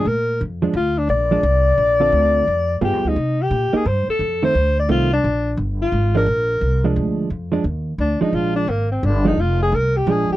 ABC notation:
X:1
M:3/4
L:1/8
Q:"Swing" 1/4=174
K:Bbmix
V:1 name="Alto saxophone"
B2 z2 F D | d6- | d4 G E- | E G2 A c =A- |
=A c2 d F D- | D2 z F2 B- | B4 z2 | z4 D E |
F D B, C D E | F A B G A G |]
V:2 name="Hollow-body jazz guitar"
z3 [F,A,D] z2 | z [F,A,D] z3 [D,CF=A]- | [D,CF=A]2 z2 [G,=B,F_A]2 | z3 [B,EG] z2 |
z [E,=A,C] z2 [E,A,C] z | z4 z [F,A,D] | z3 [F,A,D]3 | z [F,A,D] z3 [F,A,D]- |
[F,A,D]2 z3 [F,A,D] | z4 [F,A,D]2 |]
V:3 name="Upright bass" clef=bass
B,,2 F,,2 D,,2 | B,,,2 C,,2 B,,,2 | D,,2 F,,2 (3G,, F,, D,, | C,2 B,, z G,, z |
F,,2 D,,2 C,,2 | B,,,2 G,,,2 A,,,2 | B,,,2 C,,2 D,,2 | F,,2 E,,2 D,, z |
B,,,2 A,,,2 G,,,2 | F,,,2 C,,2 B,,, z |]